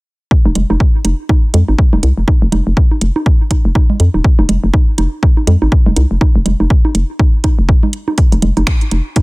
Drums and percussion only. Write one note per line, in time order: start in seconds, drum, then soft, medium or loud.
0.31 kick loud
0.46 high conga soft
0.55 closed hi-hat medium
0.55 low conga medium
0.70 high conga medium
0.80 kick loud
1.05 closed hi-hat medium
1.05 high conga soft
1.29 kick loud
1.29 high conga medium
1.54 closed hi-hat medium
1.54 low conga medium
1.68 high conga soft
1.79 kick loud
1.93 high conga medium
1.93 low conga medium
2.03 closed hi-hat medium
2.28 kick loud
2.28 high conga soft
2.52 closed hi-hat medium
2.52 high conga medium
2.52 low conga medium
2.77 kick loud
2.91 high conga soft
3.01 closed hi-hat medium
3.16 high conga medium
3.26 kick loud
3.51 kick medium
3.51 closed hi-hat medium
3.51 high conga soft
3.75 kick loud
3.75 high conga medium
3.90 low conga medium
4.00 closed hi-hat medium
4.14 high conga soft
4.24 kick loud
4.39 high conga medium
4.49 closed hi-hat medium
4.49 low conga medium
4.74 kick loud
4.74 high conga soft
4.98 closed hi-hat medium
4.98 high conga medium
5.23 kick loud
5.37 high conga soft
5.47 closed hi-hat medium
5.47 low conga medium
5.62 high conga medium
5.72 kick loud
5.86 low conga medium
5.96 closed hi-hat medium
5.96 high conga soft
6.21 kick loud
6.21 high conga medium
6.46 closed hi-hat medium
6.46 low conga medium
6.60 high conga soft
6.70 kick loud
6.85 high conga medium
6.95 closed hi-hat medium
7.19 kick loud
7.19 high conga soft
7.44 kick medium
7.44 closed hi-hat medium
7.44 high conga medium
7.69 kick loud
7.83 high conga soft
7.83 low conga medium
7.93 closed hi-hat medium
8.08 high conga medium
8.18 kick loud
8.18 closed hi-hat medium
8.32 closed hi-hat soft
8.32 high conga soft
8.42 closed hi-hat medium
8.42 low conga medium
8.57 closed hi-hat soft
8.57 high conga medium
8.67 finger snap medium
8.67 kick loud
8.67 closed hi-hat medium
8.81 closed hi-hat soft
8.91 closed hi-hat medium
8.91 high conga soft
9.16 kick loud
9.16 closed hi-hat medium
9.16 high conga medium